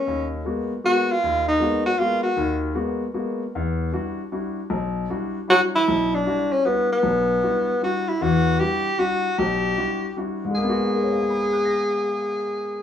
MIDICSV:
0, 0, Header, 1, 3, 480
1, 0, Start_track
1, 0, Tempo, 389105
1, 63, Time_signature, 3, 2, 24, 8
1, 15822, End_track
2, 0, Start_track
2, 0, Title_t, "Tenor saxophone"
2, 0, Program_c, 0, 66
2, 0, Note_on_c, 0, 61, 73
2, 379, Note_off_c, 0, 61, 0
2, 1054, Note_on_c, 0, 66, 100
2, 1376, Note_on_c, 0, 65, 96
2, 1395, Note_off_c, 0, 66, 0
2, 1821, Note_off_c, 0, 65, 0
2, 1828, Note_on_c, 0, 63, 88
2, 2266, Note_off_c, 0, 63, 0
2, 2294, Note_on_c, 0, 66, 85
2, 2449, Note_on_c, 0, 65, 92
2, 2467, Note_off_c, 0, 66, 0
2, 2745, Note_off_c, 0, 65, 0
2, 2752, Note_on_c, 0, 66, 82
2, 3206, Note_off_c, 0, 66, 0
2, 6786, Note_on_c, 0, 66, 100
2, 6923, Note_off_c, 0, 66, 0
2, 7100, Note_on_c, 0, 64, 96
2, 7582, Note_on_c, 0, 62, 86
2, 7600, Note_off_c, 0, 64, 0
2, 8049, Note_on_c, 0, 61, 78
2, 8068, Note_off_c, 0, 62, 0
2, 8210, Note_on_c, 0, 59, 84
2, 8228, Note_off_c, 0, 61, 0
2, 8524, Note_off_c, 0, 59, 0
2, 8543, Note_on_c, 0, 59, 81
2, 9615, Note_off_c, 0, 59, 0
2, 9667, Note_on_c, 0, 66, 85
2, 9977, Note_on_c, 0, 64, 80
2, 9996, Note_off_c, 0, 66, 0
2, 10142, Note_on_c, 0, 66, 96
2, 10161, Note_off_c, 0, 64, 0
2, 10603, Note_on_c, 0, 67, 105
2, 10621, Note_off_c, 0, 66, 0
2, 11089, Note_on_c, 0, 66, 95
2, 11107, Note_off_c, 0, 67, 0
2, 11574, Note_on_c, 0, 67, 100
2, 11593, Note_off_c, 0, 66, 0
2, 12538, Note_off_c, 0, 67, 0
2, 13016, Note_on_c, 0, 68, 85
2, 15822, Note_off_c, 0, 68, 0
2, 15822, End_track
3, 0, Start_track
3, 0, Title_t, "Grand piano"
3, 0, Program_c, 1, 0
3, 85, Note_on_c, 1, 39, 67
3, 489, Note_off_c, 1, 39, 0
3, 554, Note_on_c, 1, 56, 53
3, 558, Note_on_c, 1, 58, 45
3, 568, Note_on_c, 1, 66, 55
3, 572, Note_on_c, 1, 59, 45
3, 875, Note_off_c, 1, 56, 0
3, 877, Note_off_c, 1, 58, 0
3, 882, Note_off_c, 1, 66, 0
3, 884, Note_off_c, 1, 59, 0
3, 1038, Note_on_c, 1, 56, 50
3, 1040, Note_on_c, 1, 66, 54
3, 1042, Note_on_c, 1, 58, 42
3, 1046, Note_on_c, 1, 59, 45
3, 1357, Note_off_c, 1, 56, 0
3, 1358, Note_off_c, 1, 66, 0
3, 1359, Note_off_c, 1, 58, 0
3, 1361, Note_off_c, 1, 59, 0
3, 1519, Note_on_c, 1, 39, 73
3, 1925, Note_off_c, 1, 39, 0
3, 1968, Note_on_c, 1, 56, 49
3, 1972, Note_on_c, 1, 58, 46
3, 1982, Note_on_c, 1, 59, 48
3, 1990, Note_on_c, 1, 66, 61
3, 2302, Note_off_c, 1, 56, 0
3, 2304, Note_off_c, 1, 58, 0
3, 2309, Note_off_c, 1, 59, 0
3, 2313, Note_off_c, 1, 66, 0
3, 2462, Note_on_c, 1, 56, 50
3, 2464, Note_on_c, 1, 59, 44
3, 2465, Note_on_c, 1, 58, 44
3, 2469, Note_on_c, 1, 66, 56
3, 2788, Note_off_c, 1, 56, 0
3, 2789, Note_off_c, 1, 59, 0
3, 2790, Note_off_c, 1, 58, 0
3, 2792, Note_off_c, 1, 66, 0
3, 2917, Note_on_c, 1, 51, 73
3, 2925, Note_on_c, 1, 39, 70
3, 3342, Note_off_c, 1, 51, 0
3, 3346, Note_off_c, 1, 39, 0
3, 3378, Note_on_c, 1, 56, 52
3, 3387, Note_on_c, 1, 58, 46
3, 3393, Note_on_c, 1, 66, 55
3, 3397, Note_on_c, 1, 59, 46
3, 3726, Note_off_c, 1, 56, 0
3, 3731, Note_off_c, 1, 58, 0
3, 3733, Note_off_c, 1, 66, 0
3, 3735, Note_off_c, 1, 59, 0
3, 3876, Note_on_c, 1, 66, 53
3, 3879, Note_on_c, 1, 56, 48
3, 3880, Note_on_c, 1, 58, 47
3, 3883, Note_on_c, 1, 59, 43
3, 4215, Note_off_c, 1, 66, 0
3, 4216, Note_off_c, 1, 56, 0
3, 4216, Note_off_c, 1, 58, 0
3, 4218, Note_off_c, 1, 59, 0
3, 4382, Note_on_c, 1, 40, 68
3, 4795, Note_off_c, 1, 40, 0
3, 4838, Note_on_c, 1, 55, 46
3, 4842, Note_on_c, 1, 62, 48
3, 4850, Note_on_c, 1, 64, 48
3, 4856, Note_on_c, 1, 66, 61
3, 5175, Note_off_c, 1, 55, 0
3, 5177, Note_off_c, 1, 62, 0
3, 5181, Note_off_c, 1, 64, 0
3, 5184, Note_off_c, 1, 66, 0
3, 5328, Note_on_c, 1, 55, 49
3, 5331, Note_on_c, 1, 64, 49
3, 5331, Note_on_c, 1, 66, 53
3, 5335, Note_on_c, 1, 62, 44
3, 5660, Note_off_c, 1, 55, 0
3, 5661, Note_off_c, 1, 64, 0
3, 5661, Note_off_c, 1, 66, 0
3, 5663, Note_off_c, 1, 62, 0
3, 5799, Note_on_c, 1, 35, 73
3, 6222, Note_off_c, 1, 35, 0
3, 6290, Note_on_c, 1, 55, 53
3, 6292, Note_on_c, 1, 62, 50
3, 6293, Note_on_c, 1, 64, 48
3, 6295, Note_on_c, 1, 66, 54
3, 6621, Note_off_c, 1, 55, 0
3, 6621, Note_off_c, 1, 62, 0
3, 6622, Note_off_c, 1, 64, 0
3, 6623, Note_off_c, 1, 66, 0
3, 6755, Note_on_c, 1, 55, 51
3, 6760, Note_on_c, 1, 64, 49
3, 6767, Note_on_c, 1, 62, 45
3, 6774, Note_on_c, 1, 66, 56
3, 7093, Note_off_c, 1, 55, 0
3, 7096, Note_off_c, 1, 64, 0
3, 7099, Note_off_c, 1, 62, 0
3, 7103, Note_off_c, 1, 66, 0
3, 7255, Note_on_c, 1, 35, 75
3, 7670, Note_off_c, 1, 35, 0
3, 7725, Note_on_c, 1, 55, 50
3, 7725, Note_on_c, 1, 62, 47
3, 7727, Note_on_c, 1, 64, 49
3, 7728, Note_on_c, 1, 66, 58
3, 8058, Note_off_c, 1, 55, 0
3, 8058, Note_off_c, 1, 62, 0
3, 8059, Note_off_c, 1, 64, 0
3, 8059, Note_off_c, 1, 66, 0
3, 8204, Note_on_c, 1, 55, 50
3, 8207, Note_on_c, 1, 62, 44
3, 8211, Note_on_c, 1, 64, 47
3, 8214, Note_on_c, 1, 66, 54
3, 8537, Note_off_c, 1, 55, 0
3, 8539, Note_off_c, 1, 62, 0
3, 8541, Note_off_c, 1, 64, 0
3, 8543, Note_off_c, 1, 66, 0
3, 8674, Note_on_c, 1, 35, 69
3, 9099, Note_off_c, 1, 35, 0
3, 9159, Note_on_c, 1, 55, 53
3, 9168, Note_on_c, 1, 64, 50
3, 9173, Note_on_c, 1, 66, 55
3, 9177, Note_on_c, 1, 62, 44
3, 9495, Note_off_c, 1, 55, 0
3, 9500, Note_off_c, 1, 64, 0
3, 9503, Note_off_c, 1, 66, 0
3, 9504, Note_off_c, 1, 62, 0
3, 9643, Note_on_c, 1, 55, 49
3, 9652, Note_on_c, 1, 64, 47
3, 9657, Note_on_c, 1, 66, 55
3, 9659, Note_on_c, 1, 62, 46
3, 9977, Note_off_c, 1, 55, 0
3, 9982, Note_off_c, 1, 64, 0
3, 9985, Note_off_c, 1, 62, 0
3, 9985, Note_off_c, 1, 66, 0
3, 10128, Note_on_c, 1, 52, 71
3, 10138, Note_on_c, 1, 40, 67
3, 10547, Note_off_c, 1, 52, 0
3, 10553, Note_off_c, 1, 40, 0
3, 10602, Note_on_c, 1, 55, 52
3, 10608, Note_on_c, 1, 62, 45
3, 10611, Note_on_c, 1, 64, 45
3, 10611, Note_on_c, 1, 66, 60
3, 10937, Note_off_c, 1, 55, 0
3, 10940, Note_off_c, 1, 62, 0
3, 10942, Note_off_c, 1, 64, 0
3, 10942, Note_off_c, 1, 66, 0
3, 11075, Note_on_c, 1, 55, 53
3, 11085, Note_on_c, 1, 64, 44
3, 11086, Note_on_c, 1, 62, 46
3, 11087, Note_on_c, 1, 66, 57
3, 11414, Note_off_c, 1, 55, 0
3, 11419, Note_off_c, 1, 64, 0
3, 11420, Note_off_c, 1, 62, 0
3, 11420, Note_off_c, 1, 66, 0
3, 11579, Note_on_c, 1, 35, 74
3, 11994, Note_off_c, 1, 35, 0
3, 12054, Note_on_c, 1, 55, 50
3, 12055, Note_on_c, 1, 62, 48
3, 12063, Note_on_c, 1, 64, 47
3, 12064, Note_on_c, 1, 66, 57
3, 12385, Note_off_c, 1, 55, 0
3, 12385, Note_off_c, 1, 62, 0
3, 12389, Note_off_c, 1, 64, 0
3, 12390, Note_off_c, 1, 66, 0
3, 12538, Note_on_c, 1, 55, 47
3, 12546, Note_on_c, 1, 62, 44
3, 12552, Note_on_c, 1, 66, 54
3, 12556, Note_on_c, 1, 64, 43
3, 12867, Note_off_c, 1, 55, 0
3, 12871, Note_off_c, 1, 62, 0
3, 12874, Note_off_c, 1, 66, 0
3, 12876, Note_off_c, 1, 64, 0
3, 12885, Note_on_c, 1, 44, 63
3, 12962, Note_on_c, 1, 56, 57
3, 13040, Note_on_c, 1, 58, 62
3, 13113, Note_on_c, 1, 59, 55
3, 13190, Note_on_c, 1, 66, 68
3, 13506, Note_on_c, 1, 70, 42
3, 13609, Note_on_c, 1, 73, 41
3, 13710, Note_on_c, 1, 77, 36
3, 13819, Note_on_c, 1, 80, 37
3, 13942, Note_on_c, 1, 83, 34
3, 14076, Note_on_c, 1, 87, 31
3, 14220, Note_on_c, 1, 90, 30
3, 14375, Note_on_c, 1, 94, 29
3, 15822, Note_off_c, 1, 44, 0
3, 15822, Note_off_c, 1, 56, 0
3, 15822, Note_off_c, 1, 58, 0
3, 15822, Note_off_c, 1, 59, 0
3, 15822, Note_off_c, 1, 66, 0
3, 15822, Note_off_c, 1, 70, 0
3, 15822, Note_off_c, 1, 73, 0
3, 15822, Note_off_c, 1, 77, 0
3, 15822, Note_off_c, 1, 80, 0
3, 15822, Note_off_c, 1, 83, 0
3, 15822, Note_off_c, 1, 87, 0
3, 15822, Note_off_c, 1, 90, 0
3, 15822, Note_off_c, 1, 94, 0
3, 15822, End_track
0, 0, End_of_file